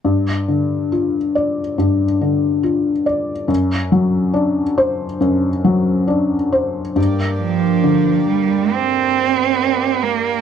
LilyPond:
<<
  \new Staff \with { instrumentName = "Harmonium" } { \time 4/4 \key g \minor \tempo 4 = 69 r1 | r1 | <bes g' d''>1 | }
  \new Staff \with { instrumentName = "Cello" } { \clef bass \time 4/4 \key g \minor r1 | r1 | r8 f4 g8 c'4. bes8 | }
  \new Staff \with { instrumentName = "Felt piano" } { \clef bass \time 4/4 \key g \minor g,8 d8 f'8 d''8 g,8 d8 f'8 d''8 | fis,8 fis8 d'8 c''8 fis,8 fis8 d'8 c''8 | g,4 d2. | }
>>